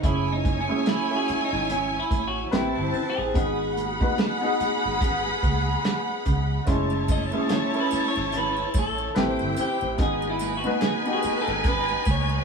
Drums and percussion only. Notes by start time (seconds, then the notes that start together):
0.03 kick, closed hi-hat, low conga
0.28 muted conga
0.45 kick, closed hi-hat, high conga
0.71 high conga
0.86 snare, closed hi-hat, high conga
1.28 closed hi-hat, high conga
1.52 snare
1.70 closed hi-hat, muted conga, low conga
1.95 muted conga
2.11 kick, closed hi-hat, high conga
2.52 snare, closed hi-hat, muted conga, high conga
2.76 muted conga
2.93 open hi-hat, low conga
3.34 kick, closed hi-hat, muted conga, low conga
3.77 closed hi-hat, high conga
4.01 kick, high conga
4.17 snare, closed hi-hat, muted conga, high conga
4.42 muted conga
4.60 closed hi-hat, high conga
5.01 kick, closed hi-hat, low conga
5.26 muted conga
5.43 kick, closed hi-hat, high conga
5.84 snare, closed hi-hat, high conga
6.09 muted conga
6.26 kick, closed hi-hat, low conga
6.67 kick, closed hi-hat, muted conga, low conga, muted triangle
6.90 muted conga, muted triangle
7.08 kick, closed hi-hat, high conga, triangle
7.32 high conga, muted triangle
7.49 snare, closed hi-hat, muted conga, high conga, muted triangle
7.73 muted conga, muted triangle
7.91 closed hi-hat, high conga, triangle
8.16 snare, muted triangle
8.32 closed hi-hat, muted conga, low conga, muted triangle
8.57 muted conga, muted triangle
8.74 kick, closed hi-hat, high conga, triangle
8.98 muted triangle
9.16 snare, closed hi-hat, high conga, muted triangle
9.39 muted triangle
9.57 closed hi-hat, low conga, triangle
9.81 muted triangle
9.98 kick, closed hi-hat, low conga, muted triangle
10.22 muted conga, muted triangle
10.39 closed hi-hat, high conga, triangle
10.64 high conga, muted triangle
10.81 snare, closed hi-hat, high conga, muted triangle
11.06 muted triangle
11.23 closed hi-hat, high conga, triangle
11.48 snare, muted triangle
11.64 kick, closed hi-hat, low conga, muted triangle
11.89 muted conga, muted triangle
12.05 kick, closed hi-hat, high conga, triangle
12.29 muted triangle